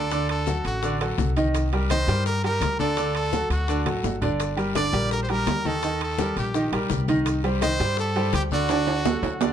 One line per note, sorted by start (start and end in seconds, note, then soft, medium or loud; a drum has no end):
0.00 0.59 D2 medium
0.00 0.30 A4 medium
0.11 0.41 D3 medium
0.11 0.41 D4 medium
0.11 0.41 D5 medium
0.11 high bongo medium
0.11 high conga soft
0.11 high timbale medium
0.11 long guiro medium
0.11 maracas medium
0.29 0.63 A4 medium
0.29 high bongo soft
0.29 high conga soft
0.29 high timbale loud
0.29 maracas soft
0.46 0.76 F#3 medium
0.46 0.76 F#4 medium
0.46 0.77 A4 medium
0.46 high bongo medium
0.46 high conga medium
0.46 short guiro medium
0.46 maracas medium
0.65 1.15 A1 loud
0.65 0.99 F#4 medium
0.65 high bongo soft
0.65 high timbale medium
0.65 short guiro medium
0.65 maracas soft
0.83 0.97 D3 medium
0.83 0.97 D4 medium
0.83 0.98 D5 medium
0.83 high bongo medium
0.83 high conga soft
0.83 long guiro medium
0.83 maracas medium
1.01 1.30 F#3 medium
1.01 1.30 F#4 medium
1.01 1.30 A4 medium
1.01 high conga soft
1.01 high timbale loud
1.01 maracas soft
1.18 2.02 C2 loud
1.18 high bongo medium
1.18 low bongo medium
1.18 high conga medium
1.18 short guiro medium
1.18 maracas medium
1.36 1.66 D#3 medium
1.36 1.66 D#4 medium
1.36 1.66 D#5 medium
1.36 high bongo soft
1.36 high conga medium
1.36 high timbale medium
1.36 short guiro medium
1.36 maracas soft
1.54 high bongo medium
1.54 high conga soft
1.54 high timbale medium
1.54 long guiro medium
1.54 maracas medium
1.73 1.87 G3 medium
1.73 1.87 G4 medium
1.73 1.88 A#4 medium
1.73 high conga soft
1.73 high timbale medium
1.73 maracas soft
1.90 2.05 D#3 medium
1.90 2.05 D#4 medium
1.90 2.24 C5 loud
1.90 2.05 D#5 medium
1.90 high bongo medium
1.90 high conga medium
1.90 high timbale loud
1.90 short guiro medium
1.90 maracas medium
2.08 2.57 G2 loud
2.08 2.37 G3 medium
2.08 2.38 G4 medium
2.08 2.38 A#4 medium
2.08 high timbale medium
2.08 short guiro medium
2.08 maracas soft
2.26 2.43 A#4 loud
2.26 high bongo medium
2.26 high conga soft
2.26 long guiro medium
2.26 maracas medium
2.44 2.73 G3 medium
2.44 2.73 G4 medium
2.44 2.77 A#4 medium
2.44 2.73 A#4 medium
2.44 high conga soft
2.44 high timbale medium
2.44 maracas soft
2.61 3.45 D2 medium
2.61 high bongo medium
2.61 low bongo medium
2.61 high conga medium
2.61 high timbale medium
2.61 short guiro medium
2.61 maracas medium
2.79 2.94 D3 medium
2.79 2.94 D4 medium
2.79 3.13 A4 medium
2.79 2.94 D5 medium
2.79 high conga medium
2.79 short guiro medium
2.79 maracas soft
2.97 3.26 D3 medium
2.97 3.26 D4 medium
2.97 3.27 D5 medium
2.97 high bongo medium
2.97 high timbale medium
2.97 long guiro medium
2.97 maracas medium
3.15 3.49 A4 medium
3.15 high bongo soft
3.15 high conga soft
3.15 high timbale medium
3.15 maracas soft
3.33 3.62 F#3 medium
3.33 3.62 F#4 medium
3.33 3.62 A4 medium
3.33 high bongo medium
3.33 high conga medium
3.33 short guiro medium
3.33 maracas medium
3.50 3.83 D2 medium
3.50 3.85 F#4 medium
3.50 high bongo soft
3.50 high timbale medium
3.50 short guiro medium
3.50 maracas soft
3.68 3.83 D3 medium
3.68 3.83 D4 medium
3.68 3.83 D5 medium
3.68 high bongo medium
3.68 high conga soft
3.68 long guiro medium
3.68 maracas medium
3.86 4.03 A1 medium
3.86 4.15 F#3 medium
3.86 4.16 F#4 medium
3.86 4.16 A4 medium
3.86 high conga medium
3.86 high timbale medium
3.86 maracas soft
4.04 4.87 G1 medium
4.04 high bongo medium
4.04 low bongo medium
4.04 low timbale medium
4.04 short guiro medium
4.04 maracas medium
4.21 4.51 D3 medium
4.21 4.51 D4 medium
4.21 4.51 D5 medium
4.21 high bongo soft
4.21 low conga medium
4.21 high timbale medium
4.21 short guiro medium
4.21 maracas soft
4.40 high bongo medium
4.40 high conga soft
4.40 high timbale medium
4.40 long guiro medium
4.40 maracas medium
4.57 4.72 G3 medium
4.57 4.72 G4 medium
4.57 4.72 A#4 medium
4.57 high conga soft
4.57 high timbale medium
4.57 maracas soft
4.75 4.90 D3 medium
4.75 4.90 D4 medium
4.75 4.90 D5 medium
4.75 5.09 D5 loud
4.75 high bongo medium
4.75 high conga medium
4.75 high timbale medium
4.75 short guiro medium
4.75 maracas medium
4.93 5.43 A#1 loud
4.93 5.22 G3 medium
4.93 5.23 G4 medium
4.93 5.23 A#4 medium
4.93 high timbale medium
4.93 short guiro medium
4.93 maracas soft
5.11 5.22 A#4 medium
5.11 high bongo medium
5.11 high conga soft
5.11 long guiro medium
5.11 maracas medium
5.23 5.32 C5 medium
5.29 5.59 G3 medium
5.29 5.59 G4 medium
5.29 5.59 A#4 medium
5.29 5.68 A#4 medium
5.29 high conga soft
5.29 high timbale medium
5.29 maracas soft
5.47 6.31 D#2 medium
5.47 high bongo medium
5.47 low bongo medium
5.47 high conga medium
5.47 high timbale loud
5.47 low timbale medium
5.47 short guiro medium
5.47 maracas medium
5.65 5.80 D#3 medium
5.65 5.80 D#4 medium
5.65 6.02 A4 loud
5.65 5.80 D#5 medium
5.65 high conga medium
5.65 short guiro medium
5.65 maracas soft
5.83 6.13 D#3 medium
5.83 6.13 D#4 medium
5.83 6.13 D#5 medium
5.83 high bongo medium
5.83 high conga soft
5.83 high timbale medium
5.83 long guiro medium
5.83 maracas medium
6.01 6.35 A4 medium
6.01 high bongo soft
6.01 high conga soft
6.01 high timbale loud
6.01 maracas soft
6.18 6.48 G3 medium
6.18 6.48 G4 medium
6.18 6.49 A#4 medium
6.18 high bongo medium
6.18 high conga medium
6.18 short guiro medium
6.18 maracas medium
6.36 6.70 A#1 medium
6.36 6.71 G4 medium
6.36 high bongo soft
6.36 high timbale medium
6.36 short guiro medium
6.36 maracas soft
6.54 6.69 D#3 medium
6.54 6.69 D#4 medium
6.54 6.70 D#5 medium
6.54 high bongo medium
6.54 high conga soft
6.54 long guiro medium
6.54 maracas medium
6.72 6.89 A#1 medium
6.72 7.02 G3 medium
6.72 7.02 G4 medium
6.72 7.02 A#4 medium
6.72 high conga soft
6.72 high timbale medium
6.72 maracas soft
6.90 7.74 C2 medium
6.90 high bongo medium
6.90 low bongo medium
6.90 high conga medium
6.90 short guiro medium
6.90 maracas medium
7.08 7.38 D#3 medium
7.08 7.38 D#4 medium
7.08 7.38 D#5 medium
7.08 high bongo soft
7.08 high conga medium
7.08 high timbale medium
7.08 short guiro medium
7.08 maracas soft
7.26 high bongo medium
7.26 high timbale loud
7.26 long guiro medium
7.26 maracas medium
7.44 7.59 G3 medium
7.44 7.59 G4 medium
7.44 7.59 C5 medium
7.44 high conga soft
7.44 high timbale medium
7.44 maracas soft
7.62 7.76 D#3 medium
7.62 7.77 D#4 medium
7.62 7.96 C5 loud
7.62 7.77 D#5 medium
7.62 high bongo medium
7.62 high conga medium
7.62 high timbale loud
7.62 short guiro medium
7.62 maracas medium
7.80 8.30 G2 loud
7.80 8.09 G3 medium
7.80 8.10 G4 medium
7.80 8.10 C5 medium
7.80 high conga soft
7.80 high timbale medium
7.80 short guiro medium
7.97 8.32 A4 medium
7.97 high bongo medium
7.97 high conga soft
7.97 long guiro medium
7.97 maracas medium
8.16 8.45 G3 medium
8.16 8.46 G4 medium
8.16 8.46 C5 medium
8.16 high conga soft
8.16 high timbale medium
8.16 maracas soft
8.33 9.17 D2 medium
8.33 8.43 G4 loud
8.33 high bongo medium
8.33 low bongo medium
8.33 high conga medium
8.33 high timbale medium
8.33 short guiro medium
8.33 maracas medium
8.51 8.66 D3 medium
8.51 8.67 D4 medium
8.51 9.53 F#4 loud
8.51 8.67 D5 medium
8.51 high conga medium
8.51 short guiro medium
8.51 maracas soft
8.69 8.99 D3 medium
8.69 8.99 D4 medium
8.69 8.99 D5 medium
8.69 high bongo medium
8.69 high conga soft
8.69 high timbale medium
8.69 long guiro medium
8.69 maracas medium
8.87 high bongo soft
8.87 high timbale loud
8.87 maracas soft
9.05 9.35 F#3 medium
9.05 9.35 F#4 medium
9.05 9.35 A4 medium
9.05 high bongo medium
9.05 high conga loud
9.05 low timbale loud
9.05 short guiro medium
9.05 maracas medium
9.23 9.53 D2 loud
9.23 high bongo soft
9.23 high timbale loud
9.23 short guiro medium
9.23 maracas soft
9.41 9.53 D3 medium
9.41 9.53 D4 medium
9.41 9.53 D5 medium
9.41 high bongo medium
9.41 high conga soft
9.41 low timbale loud
9.41 long guiro medium
9.41 maracas medium